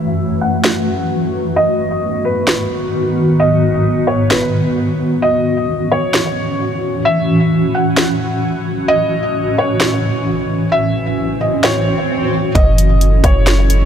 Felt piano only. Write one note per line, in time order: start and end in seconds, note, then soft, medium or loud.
0.00 0.38 E5 loud
0.41 1.52 F#5 medium
1.56 2.21 D#5 loud
2.25 3.35 B4 medium
3.40 4.04 D#5 loud
4.07 4.29 C#5 medium
4.30 5.18 B4 medium
5.22 5.87 D#5 loud
5.92 7.02 C#5 medium
7.05 7.70 E5 loud
7.75 8.85 F#5 medium
8.88 9.53 D#5 loud
9.58 10.68 C#5 medium
10.72 11.37 E5 medium
11.41 11.63 D#5 medium
11.64 12.51 C#5 medium
12.55 13.20 D#5 loud
13.24 13.85 C#5 medium